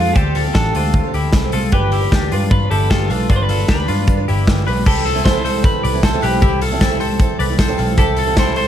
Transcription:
Already playing: picked electric bass F2, twelve-string acoustic guitar A3 C4, clean electric guitar D4 F4
0.00 twelve-string acoustic guitar G4 A4
0.13 picked electric bass D2, twelve-string acoustic guitar D3 A3 C4 G4 A4, clean electric guitar G4 A4 C5, kick, closed hi-hat
0.35 clean electric guitar F4 A4, open hi-hat
0.45 twelve-string acoustic guitar C4 G4 A4
0.54 picked electric bass A1, clean electric guitar D4 A4, kick, snare, closed hi-hat
0.74 picked electric bass D2, twelve-string acoustic guitar A3 C4 G4 A4, clean electric guitar D4 F4, open hi-hat
0.94 kick, closed hi-hat
1.03 twelve-string acoustic guitar C4 G4 A4
1.14 picked electric bass D2, clean electric guitar E4 G4, open hi-hat
1.33 picked electric bass C2, twelve-string acoustic guitar A3 C4 G4 A4, kick, snare, closed hi-hat
1.52 picked electric bass C2, twelve-string acoustic guitar A3 C4 G4 A4, clean electric guitar F4 A4, open hi-hat
1.72 picked electric bass G1, twelve-string acoustic guitar G3 D4 F4 B4, clean electric guitar G4 B4, kick, closed hi-hat
1.92 clean electric guitar E4 G4, open hi-hat
2.01 twelve-string acoustic guitar D4 F4 B4
2.12 picked electric bass D2, clean electric guitar D4 G4, kick, snare, closed hi-hat
2.31 picked electric bass G2, twelve-string acoustic guitar G3 D4 F4 B4, clean electric guitar D4 F4, open hi-hat
2.51 picked electric bass G2, clean electric guitar B4, kick, closed hi-hat
2.60 twelve-string acoustic guitar D4 F4 B4
2.71 picked electric bass G1, clean electric guitar E4 G4 A4, open hi-hat
2.90 picked electric bass G1, twelve-string acoustic guitar G3 D4 F4 B4, clean electric guitar F4 G4 A4, kick, snare, closed hi-hat
3.09 picked electric bass B1, twelve-string acoustic guitar G3 D4 F4 B4, clean electric guitar D4 F4 A4, open hi-hat
3.28 picked electric bass G1, twelve-string acoustic guitar G3 D4 F4 B4, clean electric guitar D4 F4 B4, kick, closed hi-hat
3.36 clean electric guitar C5
3.43 clean electric guitar B4
3.49 clean electric guitar F4 A4, open hi-hat
3.57 twelve-string acoustic guitar D4 F4 B4
3.68 picked electric bass D2, clean electric guitar D4 G4 B4, kick, snare, closed hi-hat
3.87 picked electric bass G2, twelve-string acoustic guitar G3 D4 F4 B4, clean electric guitar D4 F4, open hi-hat
4.07 picked electric bass G2, kick, closed hi-hat
4.17 twelve-string acoustic guitar D4 F4 B4
4.28 picked electric bass G1, clean electric guitar E4 G4, open hi-hat
4.47 picked electric bass G1, twelve-string acoustic guitar G3 D4 F4 B4, kick, snare
4.66 picked electric bass B1, twelve-string acoustic guitar G3 D4 F4 B4, clean electric guitar G4 B4, open hi-hat
4.85 picked electric bass C2, twelve-string acoustic guitar G3 C4 E4 A4, clean electric guitar E4 G4 A4, kick, crash, tambourine
5.05 clean electric guitar F4 A4, open hi-hat, tambourine
5.14 twelve-string acoustic guitar C3 E3 G3 C4 E4 A4
5.25 clean electric guitar E4 A4 C5, kick, snare, tambourine
5.34 twelve-string acoustic guitar G3 C4 E4 A4
5.45 clean electric guitar A4 C5, open hi-hat, tambourine
5.64 twelve-string acoustic guitar G3 C4 E4 A4, clean electric guitar B4, kick, closed hi-hat, tambourine
5.84 picked electric bass C2, clean electric guitar B4 D5, open hi-hat
5.93 twelve-string acoustic guitar G3 C4 E4 A4
6.03 clean electric guitar A4 C5, kick, snare, closed hi-hat, tambourine
6.13 twelve-string acoustic guitar C3 E3 G3 C4 E4 A4
6.22 picked electric bass B1, clean electric guitar G4 B4, open hi-hat, tambourine
6.42 picked electric bass C2, twelve-string acoustic guitar G3 C4 E4 A4, clean electric guitar E4 G4, kick, closed hi-hat, tambourine
6.61 clean electric guitar F4 A4, open hi-hat, tambourine
6.71 twelve-string acoustic guitar C3 E3 G3 C4 E4 A4
6.81 clean electric guitar E4 A4, kick, snare, closed hi-hat, tambourine
6.90 twelve-string acoustic guitar G3 C4 E4 A4
7.00 clean electric guitar A4 C5, open hi-hat, tambourine
7.19 twelve-string acoustic guitar G3 C4 E4 A4, kick, closed hi-hat, tambourine
7.39 picked electric bass C2, clean electric guitar B4 D5, open hi-hat
7.49 twelve-string acoustic guitar G3 C4 E4 A4
7.59 clean electric guitar A4 C5, kick, snare, tambourine
7.68 twelve-string acoustic guitar C3 E3 G3 C4 E4 A4
7.78 picked electric bass B1, clean electric guitar F4 A4, open hi-hat, tambourine
7.97 picked electric bass C2, twelve-string acoustic guitar G3 C4 E4 A4, clean electric guitar E4 G4 A4, kick, closed hi-hat, tambourine
8.16 clean electric guitar F4 A4, open hi-hat, tambourine
8.27 twelve-string acoustic guitar C3 E3 G3 C4 E4 A4
8.37 clean electric guitar E4 A4 C5, kick, snare, closed hi-hat, tambourine
8.46 twelve-string acoustic guitar G3 C4 E4 A4
8.56 clean electric guitar A4 C5, open hi-hat, tambourine

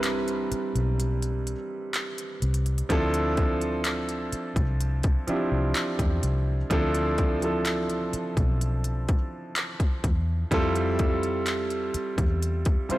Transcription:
Already playing: fingered electric bass C2, grand piano G3 C4 D4 E4 A#4 B4
0.03 clap, closed hi-hat
0.28 closed hi-hat
0.52 muted fingered electric bass stroke, closed hi-hat
0.75 fingered electric bass B1, closed hi-hat
1.00 closed hi-hat
1.22 closed hi-hat
1.47 closed hi-hat
1.94 clap, closed hi-hat
2.18 closed hi-hat
2.42 fingered electric bass C2, closed hi-hat
2.54 closed hi-hat
2.66 closed hi-hat
2.78 closed hi-hat
2.89 fingered electric bass D2, grand piano F3 C4 D4 E4 A4, kick, closed hi-hat
3.14 closed hi-hat
3.37 kick, closed hi-hat
3.61 closed hi-hat
3.85 clap, closed hi-hat
4.09 closed hi-hat
4.33 muted fingered electric bass stroke, closed hi-hat
4.56 fingered electric bass C2, kick, closed hi-hat
4.81 closed hi-hat
5.03 kick, closed hi-hat
5.27 grand piano F3 C4 D4 E4 G4, muted fingered electric bass stroke, closed hi-hat
5.52 fingered electric bass C2
5.75 clap, closed hi-hat
5.99 fingered electric bass E2, kick, closed hi-hat
6.23 fingered electric bass C2, closed hi-hat
6.70 fingered electric bass D2, grand piano F3 C4 D4 E4 A4, kick, closed hi-hat
6.95 closed hi-hat
7.18 kick, closed hi-hat
7.41 grand piano F3 C4 D4 E4 A4, closed hi-hat
7.65 clap, closed hi-hat
7.90 closed hi-hat
8.13 muted fingered electric bass stroke, closed hi-hat
8.37 fingered electric bass B1, kick, closed hi-hat
8.61 closed hi-hat
8.84 closed hi-hat
9.09 kick, closed hi-hat
9.56 clap, closed hi-hat
9.80 kick, closed hi-hat
10.04 fingered electric bass E2, kick, closed hi-hat
10.51 fingered electric bass F2, grand piano G3 C4 E4 F4 A4, kick, closed hi-hat
10.76 closed hi-hat
10.99 kick, closed hi-hat
11.23 closed hi-hat
11.46 clap, closed hi-hat
11.70 closed hi-hat
11.94 muted fingered electric bass stroke, closed hi-hat
12.18 fingered electric bass E2, kick, closed hi-hat
12.43 closed hi-hat
12.65 kick, closed hi-hat
12.89 grand piano G3 C4 E4 F4 C5, muted fingered electric bass stroke, closed hi-hat

